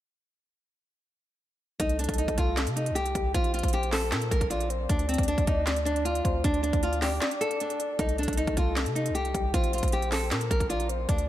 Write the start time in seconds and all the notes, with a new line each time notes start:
1.79 C2 D#4 A4, kick, closed hi-hat
1.89 closed hi-hat
1.99 D4, closed hi-hat
2.04 closed hi-hat
2.09 C2, kick, closed hi-hat
2.14 closed hi-hat
2.18 D#4, closed hi-hat
2.28 C2, kick, closed hi-hat
2.38 F4, kick, closed hi-hat
2.57 snare, clap, closed hi-hat
2.67 C3, closed hi-hat
2.76 D#4, closed hi-hat
2.86 closed hi-hat
2.91 C2
2.95 G4, closed hi-hat
3.06 closed hi-hat
3.15 C2 G4, kick, closed hi-hat
3.34 A#1 F4 C5, kick, closed hi-hat
3.44 closed hi-hat
3.54 F4, closed hi-hat
3.59 closed hi-hat
3.63 A#1, kick, closed hi-hat
3.68 closed hi-hat
3.73 G4, closed hi-hat
3.83 closed hi-hat
3.92 A4, snare, clap, open hi-hat
4.12 A#2 A#4, snare, clap, closed hi-hat
4.22 closed hi-hat
4.31 A#1 A#4, kick, closed hi-hat
4.41 kick, closed hi-hat
4.50 F4 D5, closed hi-hat
4.61 closed hi-hat
4.70 C5, closed hi-hat
4.89 D2 D4 D5, kick, closed hi-hat
4.99 closed hi-hat
5.09 C4, closed hi-hat
5.14 closed hi-hat
5.18 D2, kick, closed hi-hat
5.23 closed hi-hat
5.28 D4, closed hi-hat
5.38 D2, kick, closed hi-hat
5.47 D2 D#4, kick, closed hi-hat
5.67 snare, clap, closed hi-hat
5.76 closed hi-hat
5.85 D4, closed hi-hat
5.96 closed hi-hat
6.05 F4, closed hi-hat
6.15 closed hi-hat
6.25 D2 C5, kick, closed hi-hat
6.44 D2 D4 D5, kick, closed hi-hat
6.54 closed hi-hat
6.63 D4, closed hi-hat
6.73 D2, kick, closed hi-hat
6.83 F4, closed hi-hat
6.93 closed hi-hat
7.02 G4, snare, clap, open hi-hat
7.22 snare, clap, closed hi-hat
7.31 closed hi-hat
7.41 A4, closed hi-hat
7.51 closed hi-hat
7.60 D4, closed hi-hat
7.70 closed hi-hat
7.80 closed hi-hat
7.99 C2 D#4 A4, kick, closed hi-hat
8.09 closed hi-hat
8.18 D4, closed hi-hat
8.23 closed hi-hat
8.28 C2, kick, closed hi-hat
8.33 closed hi-hat
8.37 D#4, closed hi-hat
8.47 C2, kick, closed hi-hat
8.57 F4, kick, closed hi-hat
8.76 snare, clap, closed hi-hat
8.86 C3, closed hi-hat
8.95 D#4, closed hi-hat
9.06 closed hi-hat
9.10 C2
9.15 G4, closed hi-hat
9.25 closed hi-hat
9.34 C2 G4, kick, closed hi-hat
9.54 A#1 F4 C5, kick, closed hi-hat
9.64 closed hi-hat
9.73 F4, closed hi-hat
9.78 closed hi-hat
9.83 A#1, kick, closed hi-hat
9.88 closed hi-hat
9.92 G4, closed hi-hat
10.02 closed hi-hat
10.12 A4, snare, clap, open hi-hat
10.31 A#2 A#4, snare, clap, closed hi-hat
10.41 closed hi-hat
10.51 A#1 A#4, kick, closed hi-hat
10.60 kick, closed hi-hat
10.70 F4 D5, closed hi-hat
10.80 closed hi-hat
10.89 C5, closed hi-hat
11.09 D2 D4 D5, kick, closed hi-hat
11.18 closed hi-hat